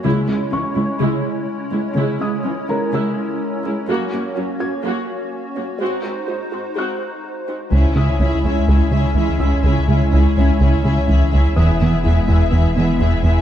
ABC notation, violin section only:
X:1
M:4/4
L:1/8
Q:1/4=125
K:C#dor
V:1 name="Violin section"
z8 | z8 | z8 | z8 |
[K:C#m] [Ge] [Ge] [Ge] [Ge] [Ge] [Ge] [Ge] [Ge] | [Ge] [Ge] [Ge] [Ge] [Ge] [Ge] [Ge] [Ge] | [Ge] [Ge] [Ge] [Ge] [Ge] [Ge] [Ge] [Ge] |]